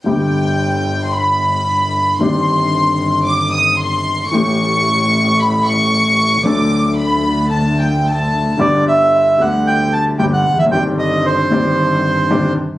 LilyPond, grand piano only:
\new Staff \with { instrumentName = "Grand piano" } { \clef bass \time 4/4 \key g \major \tempo 4 = 113 <g,, g, d g b g'>1 | <g,, g, ees c' d' g'>1 | <a,, a, e a cis' g'>1 | <d, d fis a d' a'>1 |
<g,, g, d g b g'>4. <d, d g b g'>4. <g,, g, d g b g'>8 r32 e,32 f,32 fis,32 | <g,, g, ees c' d' g'>4. <g,, g, ees c' d' g'>4. <g,, g, ees c' d' g'>8 r8 | }